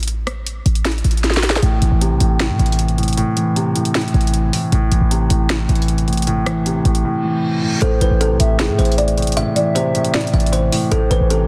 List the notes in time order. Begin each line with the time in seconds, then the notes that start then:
Already playing: A1
0.03 closed hi-hat
0.08 closed hi-hat
0.27 cross-stick, closed hi-hat
0.47 closed hi-hat
0.66 A1, closed hi-hat
0.75 closed hi-hat
0.85 snare, closed hi-hat
0.92 closed hi-hat
0.98 closed hi-hat
1.04 A1, closed hi-hat
1.11 closed hi-hat
1.17 closed hi-hat
1.24 snare, closed hi-hat
1.30 snare, closed hi-hat
1.37 snare
1.43 snare, closed hi-hat
1.50 snare, closed hi-hat
1.56 snare
1.62 A1 A2, closed hi-hat
1.82 A1 E3, closed hi-hat
1.91 A1
2.01 C3, closed hi-hat
2.11 B1
2.20 A1 A2, closed hi-hat
2.40 A2, snare, closed hi-hat
2.50 A2
2.59 A1 E3, closed hi-hat
2.66 closed hi-hat
2.72 closed hi-hat
2.79 closed hi-hat
2.88 closed hi-hat
2.98 A2, closed hi-hat
3.03 closed hi-hat
3.08 closed hi-hat
3.13 closed hi-hat
3.17 A2, closed hi-hat
3.37 E3, closed hi-hat
3.56 C3, closed hi-hat
3.75 A2, closed hi-hat
3.85 closed hi-hat
3.95 A2, snare, closed hi-hat
4.01 closed hi-hat
4.08 closed hi-hat
4.14 A1 E3, closed hi-hat
4.21 closed hi-hat
4.27 closed hi-hat
4.34 closed hi-hat
4.53 A2, open hi-hat
4.72 A1 A2, closed hi-hat
4.92 A1 E3, closed hi-hat
5.01 A1
5.11 C3, closed hi-hat
5.30 A1 A2, closed hi-hat
5.50 snare, closed hi-hat
5.69 A1 E3, closed hi-hat
5.75 closed hi-hat
5.82 closed hi-hat
5.88 closed hi-hat
5.98 closed hi-hat
6.08 A2, closed hi-hat
6.13 closed hi-hat
6.17 closed hi-hat
6.22 closed hi-hat
6.27 A2, closed hi-hat
6.46 E3, cross-stick, closed hi-hat
6.66 C3, closed hi-hat
6.85 A1 A2, closed hi-hat
6.95 closed hi-hat
7.04 A2, reverse cymbal
7.24 E3
7.63 A2
7.82 A1 A2 A4 C5, closed hi-hat
8.01 A1 E3 B4, closed hi-hat
8.11 A1
8.20 C3 A4, closed hi-hat
8.30 B1
8.40 A1 A2 E5, closed hi-hat
8.59 A2 G#4, snare, closed hi-hat
8.69 A2
8.79 A1 E3 C5, closed hi-hat
8.85 closed hi-hat
8.92 closed hi-hat
8.98 D5, closed hi-hat
9.08 closed hi-hat
9.17 A2, closed hi-hat
9.22 closed hi-hat
9.27 closed hi-hat
9.32 closed hi-hat
9.36 A2 E5, closed hi-hat
9.56 E3 D5, closed hi-hat
9.75 C3 C5, closed hi-hat
9.95 A2, closed hi-hat
10.05 closed hi-hat
10.14 A2 D5, snare, closed hi-hat
10.21 closed hi-hat
10.27 closed hi-hat
10.33 A1 E3 D5 E5, closed hi-hat
10.40 closed hi-hat
10.46 closed hi-hat
10.53 C5, closed hi-hat
10.72 A2, open hi-hat
10.92 A1 A2 A4 C5, closed hi-hat
11.11 A1 E3 B4, closed hi-hat
11.21 A1
11.30 C3 A4, closed hi-hat